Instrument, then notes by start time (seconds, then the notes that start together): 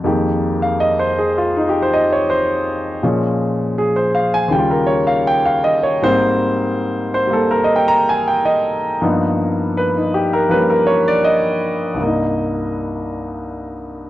grand piano
0.04 F2 D#3 G#3 A#3 G4
0.62 F5
0.80 D#5
0.99 C5
1.18 G#4
1.38 F4
1.57 D#4
1.69 G4
1.82 C5
1.93 D#5
2.12 C#5
2.30 C5
3.03 A#2 F3 G#3 C#4
3.78 G#4
3.96 C5
4.15 F5
4.34 G#5
4.48 D#2 C#3
4.52 G3 G5
4.59 F4
4.71 A#4
4.87 C#5
5.07 F5
5.27 G5
5.46 F5
5.64 D#5
5.83 C#5
6.02 G#2 G3 A#3 C4 C5
7.14 C5
7.27 G3 A#3
7.33 A4
7.51 A#4
7.64 D#5
7.76 G5
7.88 A#5
8.09 G#5
8.28 G5
8.45 D#5
9.02 G2 F3 A#3 B3 D#4
9.77 B4
9.97 D#4
10.14 G4
10.33 A#4
10.49 F3 G3 A#3 C#4 B4
10.70 A#4
10.87 C#5
11.08 D5
11.24 D#5
11.94 C2 G2
12.01 A#3
12.05 D#4